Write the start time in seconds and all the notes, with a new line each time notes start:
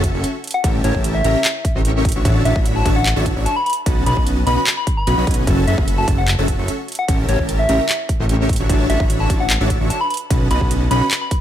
Already playing: F#1 C#4 F#4 A4 E5 A5
0.04 kick, closed hi-hat
0.14 F#1 C#4 F#4 A4 E5 C#6
0.24 closed hi-hat
0.44 closed hi-hat
0.47 closed hi-hat
0.51 F#5, closed hi-hat
0.64 A1 C#4 G4 A#4 E5 F#5 A5, kick, closed hi-hat
0.84 A1 C#4 G4 A#4 C#5 E5 A5, closed hi-hat
0.95 A1 C#4 G4 A#4 E5 A5, kick
1.04 closed hi-hat
1.15 E5
1.24 A1 C#4 G4 A#4 E5 A#5, closed hi-hat
1.45 clap, closed hi-hat
1.65 kick, closed hi-hat
1.75 A1 C#4 G4 A#4 E5 C#6
1.85 closed hi-hat
2.05 kick, closed hi-hat
2.09 closed hi-hat
2.12 A1 D4 F#4 C#5 E5 C#6, closed hi-hat
2.25 A1 D4 F#4 C#5 E5 A5, kick, closed hi-hat
2.45 A1 D4 F#4 C#5 E5 A5, closed hi-hat
2.56 A1 D4 F#4 C#5 E5 B5, kick
2.66 closed hi-hat
2.76 A5
2.86 A1 D4 F#4 C#5 E5 A5, kick, closed hi-hat
2.96 F#5
3.06 clap, closed hi-hat
3.16 A1 D4 F#4 C#5 E5 A5
3.26 kick, closed hi-hat
3.36 A1 D4 F#4 C#5 E5 C#6
3.46 A5, closed hi-hat
3.56 B5
3.66 B5, closed hi-hat
3.70 closed hi-hat
3.73 closed hi-hat
3.86 B1 C#4 F#4 B4 D#5 A5, kick, closed hi-hat
4.06 B1 C#4 F#4 B4 D#5 A5 B5, closed hi-hat
4.17 B1 C#4 F#4 B4 D#5 A5 B5, kick
4.27 closed hi-hat
4.47 B1 C#4 F#4 B4 D#5 B5, closed hi-hat
4.57 B5
4.67 clap, closed hi-hat
4.77 B5
4.87 kick, closed hi-hat
4.97 B5
5.07 B1 C#4 F#4 B4 D#5 B5, closed hi-hat
5.18 B1 C#4 F#4 B4 D#5 B5
5.27 B1 C#4 F#4 B4 D#5 G#5, kick, closed hi-hat
5.31 closed hi-hat
5.34 closed hi-hat
5.47 F#1 C#4 F#4 A4 E5 A5, kick, closed hi-hat
5.67 F#1 C#4 F#4 A4 E5 A5, closed hi-hat
5.78 F#1 C#4 F#4 A4 E5 B5, kick
5.88 closed hi-hat
5.98 A5
6.08 F#1 C#4 F#4 A4 E5 A5, kick, closed hi-hat
6.18 F#5
6.28 clap, closed hi-hat
6.38 F#1 C#4 F#4 A4 E5 A5
6.48 kick, closed hi-hat
6.58 F#1 C#4 F#4 A4 E5 C#6
6.68 closed hi-hat
6.88 closed hi-hat
6.92 closed hi-hat
6.95 F#5, closed hi-hat
7.08 A1 C#4 G4 A#4 E5 F#5 A5, kick, closed hi-hat
7.29 A1 C#4 G4 A#4 C#5 E5 A5, closed hi-hat
7.39 A1 C#4 G4 A#4 E5 A5, kick
7.49 closed hi-hat
7.59 E5
7.69 A1 C#4 G4 A#4 E5 A#5, closed hi-hat
7.89 clap, closed hi-hat
8.09 kick, closed hi-hat
8.20 A1 C#4 G4 A#4 E5 C#6
8.29 closed hi-hat
8.49 kick, closed hi-hat
8.53 closed hi-hat
8.56 A1 D4 F#4 C#5 E5 C#6, closed hi-hat
8.69 A1 D4 F#4 C#5 E5 A5, kick, closed hi-hat
8.90 A1 D4 F#4 C#5 E5 A5, closed hi-hat
9.00 A1 D4 F#4 C#5 E5 B5, kick
9.10 closed hi-hat
9.20 A5
9.30 A1 D4 F#4 C#5 E5 A5, kick, closed hi-hat
9.40 F#5
9.50 clap, closed hi-hat
9.60 A1 D4 F#4 C#5 E5 A5
9.70 kick, closed hi-hat
9.81 A1 D4 F#4 C#5 E5 C#6
9.90 A5, closed hi-hat
10.01 B5
10.10 B5, closed hi-hat
10.14 closed hi-hat
10.17 closed hi-hat
10.30 B1 C#4 F#4 B4 D#5 A5, kick, closed hi-hat
10.51 B1 C#4 F#4 B4 D#5 A5 B5, closed hi-hat
10.61 B1 C#4 F#4 B4 D#5 A5, kick
10.71 closed hi-hat
10.91 B1 C#4 F#4 B4 D#5 B5, closed hi-hat
11.01 B5
11.11 clap, closed hi-hat
11.21 B5
11.31 kick, closed hi-hat